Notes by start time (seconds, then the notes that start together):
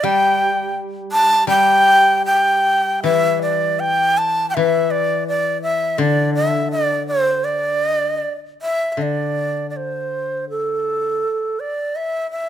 0.04 G3 G5
1.12 A5
1.47 G3 G5
2.26 G5
3.03 E3 E5
3.42 D5
3.80 G5
4.18 A5
4.50 G5
4.55 E3 E5
4.91 D5
5.28 D5
5.63 E5
5.98 D3 D5
6.35 E5
6.72 D5
7.07 C5
7.44 D5
8.62 E5
8.92 E5
8.97 D3
9.02 D5
9.70 D5
9.76 C5
10.50 A4
11.60 D5
11.96 E5
12.31 E5